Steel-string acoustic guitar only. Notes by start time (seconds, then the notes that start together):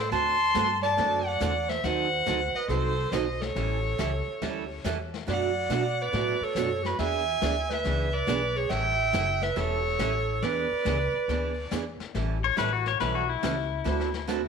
0.12 D3 A3 C4 F#4 A4
0.55 D3 A3 C4 F#4 A4
0.98 D3 A3 C4 F#4 A4
1.40 D3 A3 C4 F#4 A4
1.84 D#3 F#3 C4 D#4 A4
2.26 D#3 F#3 C4 D#4 A4
2.69 D#3 F#3 C4 D#4 A4
3.12 D#3 F#3 C4 D#4 A4
3.56 E3 G3 C#4 E4 A4
3.98 E3 G3 C#4 E4 A4
4.42 E3 G3 C#4 E4 A4
4.84 E3 G3 C#4 E4 A4
5.27 B2 F#3 A3 D4 F#4
5.70 B2 F#3 A3 D4 F#4
6.12 B2 F#3 A3 D4 F#4
6.56 B2 F#3 A3 D4 F#4
6.99 E3 B3 D4 G#4
7.42 E3 B3 D4 G#4
7.85 E3 B3 D4 G#4
8.27 E3 B3 D4 G#4
8.70 E3 G3 C#4 E4 A4
9.13 E3 G3 C#4 E4 A4
9.56 E3 G3 C#4 E4 A4
9.99 E3 G3 C#4 E4 A4
10.42 E3 B3 D4 G#4
10.85 E3 B3 D4 G#4
11.29 E3 B3 D4 G#4
11.71 E3 B3 D4 G#4
12.15 E3 G3 C#4 E4 A4
12.57 E3 G3 C#4 E4 A4
13.00 E3 G3 C#4 E4 A4
13.43 E3 G3 C#4 E4 A4
13.84 D3 A3 C4 F#4 A4
14.28 D3 A3 C4 F#4 A4